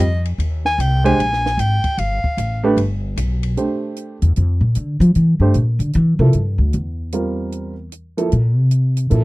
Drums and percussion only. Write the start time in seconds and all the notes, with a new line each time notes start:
0.00 hi-hat pedal, ride
0.25 ride
0.40 ride
0.65 snare
0.80 hi-hat pedal, ride
1.06 ride
1.20 ride
1.33 snare
1.46 snare
1.59 hi-hat pedal, ride
1.84 kick, ride
1.98 ride
2.24 kick
2.38 hi-hat pedal, ride
2.77 ride
3.17 hi-hat pedal, ride
3.43 ride
3.57 closed hi-hat
3.96 closed hi-hat
4.22 closed hi-hat
4.36 closed hi-hat
4.75 closed hi-hat
5.01 closed hi-hat
5.15 closed hi-hat
5.54 closed hi-hat
5.80 closed hi-hat
5.93 closed hi-hat
6.33 closed hi-hat
6.73 closed hi-hat
7.12 closed hi-hat
7.52 closed hi-hat
7.92 closed hi-hat
8.18 closed hi-hat
8.32 closed hi-hat
8.71 closed hi-hat
8.97 closed hi-hat
9.11 closed hi-hat